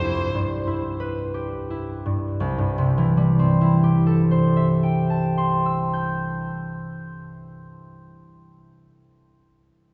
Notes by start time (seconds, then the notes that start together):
Already playing: C2 F2 G2 G4 C5
0.04 E4
0.35 G2
0.67 E4
1.00 B4
1.34 G4
1.70 E4
2.06 G2
2.40 C2
2.58 G2
2.78 C3
2.98 E3
3.17 G3
3.39 C4
3.61 E4
3.84 G4
4.07 A4
4.31 C5
4.56 E5
4.83 G5
5.10 A5
5.38 C6
5.66 E6
5.93 G6